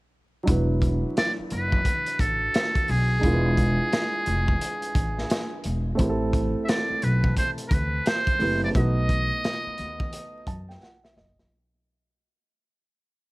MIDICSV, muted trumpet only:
0, 0, Header, 1, 2, 480
1, 0, Start_track
1, 0, Tempo, 689655
1, 330, Time_signature, 4, 2, 24, 8
1, 9267, End_track
2, 0, Start_track
2, 0, Title_t, "Muted trumpet"
2, 0, Program_c, 0, 59
2, 821, Note_on_c, 0, 74, 93
2, 927, Note_off_c, 0, 74, 0
2, 1059, Note_on_c, 0, 71, 89
2, 1533, Note_on_c, 0, 69, 87
2, 1544, Note_off_c, 0, 71, 0
2, 2020, Note_on_c, 0, 68, 93
2, 2030, Note_off_c, 0, 69, 0
2, 3935, Note_off_c, 0, 68, 0
2, 4625, Note_on_c, 0, 76, 68
2, 4660, Note_on_c, 0, 74, 97
2, 4670, Note_off_c, 0, 76, 0
2, 4897, Note_on_c, 0, 71, 80
2, 4908, Note_off_c, 0, 74, 0
2, 5134, Note_off_c, 0, 71, 0
2, 5138, Note_on_c, 0, 72, 83
2, 5228, Note_off_c, 0, 72, 0
2, 5345, Note_on_c, 0, 70, 63
2, 5380, Note_on_c, 0, 71, 86
2, 5391, Note_off_c, 0, 70, 0
2, 5623, Note_on_c, 0, 72, 103
2, 5633, Note_off_c, 0, 71, 0
2, 6006, Note_off_c, 0, 72, 0
2, 6015, Note_on_c, 0, 74, 83
2, 6052, Note_off_c, 0, 74, 0
2, 6104, Note_on_c, 0, 75, 108
2, 7509, Note_off_c, 0, 75, 0
2, 9267, End_track
0, 0, End_of_file